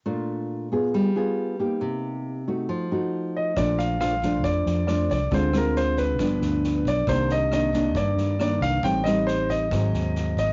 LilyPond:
<<
  \new Staff \with { instrumentName = "Grand piano" } { \time 4/4 \key bes \major \tempo 4 = 137 r1 | r2. r8 ees''8 | d''8 f''8 f''4 d''4 d''8 d''8 | c''8 bes'8 c''8 ces''2 d''8 |
c''8 ees''8 ees''4 d''4 d''8 f''8 | g''8 ees''8 c''8 ees''2 ees''8 | }
  \new Staff \with { instrumentName = "Nylon-string guitar" } { \time 4/4 \key bes \major << { <a d' f'>4. <ces' f' aes'>4 <b f' aes'>4 <bes ees' g'>8~ | <bes ees' g'>4. <a ees' ges'>4 <a ees' ges'>4. | <f a d'>4 <f a d'>8 <f a d'>4. <f a d'>8 r8 | <aes c' f'>8 <aes c' f'>4. <f b d'>2 |
<ees bes d'>4 <ees bes d'>8 <ees bes d'>4. <ees bes d'>4 | <g c' ees'>8 <g c' ees'>4. <ges c'>2 | } \\ { bes,2 g2 | c2 f2 | bes,2 f,2 | d2 g,2 |
c2 g,2 | a,2 aes,2 | } >> }
  \new Staff \with { instrumentName = "Fingered electric bass" } { \clef bass \time 4/4 \key bes \major r1 | r1 | bes,,2 f,8 f,4 c,8 | d,2 g,,8 d,4 b,,8 |
c,2 g,8 g,4 c,8 | a,,2 aes,,8 ees,4 aes,,8 | }
  \new DrumStaff \with { instrumentName = "Drums" } \drummode { \time 4/4 r4 r4 r4 r4 | r4 r4 r4 r4 | <bd ss sn>8 sn8 <ss sn>8 <bd sn>8 <bd sn>8 sn8 <ss sn>8 <bd sn>8 | <bd sn>8 <ss sn>8 sn8 <bd sn>8 <bd ss sn>8 sn8 sn8 <bd sn>8 |
<bd ss sn>8 sn8 <ss sn>8 <bd sn>8 <bd sn>8 sn8 <ss sn>8 <bd sn>8 | <bd sn>8 <ss sn>8 sn8 <bd sn>8 <bd ss sn>8 sn8 sn8 <bd sn>8 | }
>>